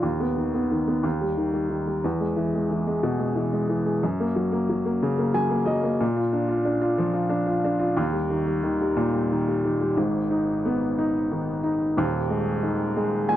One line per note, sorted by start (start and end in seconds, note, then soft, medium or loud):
0.02 1.00 D#2 medium
0.20 0.53 B3 soft
0.37 0.70 D#3 soft
0.54 0.86 B3 soft
0.71 1.04 D#3 soft
0.88 1.04 B3 soft
1.03 2.01 D#2 medium
1.21 1.52 G3 soft
1.37 1.68 D#3 soft
1.54 1.86 G3 soft
1.70 2.03 D#3 soft
1.87 2.04 G3 soft
2.04 3.99 E2 medium
2.20 2.54 G#3 soft
2.36 2.69 E3 soft
2.55 2.86 G#3 soft
2.71 3.34 E3 soft
2.87 3.18 G#3 medium
3.03 4.00 B2 medium
3.19 3.51 G#3 medium
3.35 3.68 E3 soft
3.53 3.85 G#3 soft
3.69 4.02 E3 soft
3.86 4.02 G#3 soft
4.03 5.97 F#2 medium
4.20 4.51 A#3 medium
4.36 4.68 F#3 soft
4.52 4.84 A#3 soft
4.69 5.32 F#3 medium
4.85 5.17 A#3 medium
5.03 5.98 C#3 medium
5.18 5.48 A#3 medium
5.34 5.65 F#3 soft
5.34 5.65 G#5 medium
5.50 5.81 A#3 soft
5.66 5.99 F#3 medium
5.66 5.97 D#5 medium
5.83 6.00 A#3 soft
6.00 7.94 A#2 medium
6.16 6.47 F4 medium
6.33 6.63 D4 medium
6.48 6.80 F4 medium
6.65 7.28 D4 medium
6.81 7.12 F4 medium
6.98 7.95 F3 medium
7.14 7.45 F4 medium
7.29 7.63 D4 medium
7.46 7.78 F4 medium
7.64 7.97 D4 medium
7.79 7.96 F4 medium
7.97 9.93 D#2 medium
8.13 8.45 G3 medium
8.30 8.62 D#3 soft
8.46 8.80 G3 soft
8.63 9.30 D#3 medium
8.81 9.12 G3 medium
8.96 9.94 A#2 medium
9.13 9.47 G3 medium
9.31 9.64 D#3 medium
9.48 9.79 G3 medium
9.65 9.97 D#3 medium
9.81 9.97 G3 medium
9.97 11.92 G#1 medium
9.97 11.92 G#2 medium
10.31 10.97 D#4 medium
10.65 11.93 B3 medium
10.98 11.62 D#4 medium
11.32 11.95 D#3 medium
11.64 11.96 D#4 medium
11.97 13.37 D#1 medium
11.97 13.37 D#2 medium
12.30 12.95 G#3 medium
12.63 13.37 D#3 medium
12.97 13.37 G#3 medium
13.29 13.37 A#2 medium
13.29 13.37 G#5 medium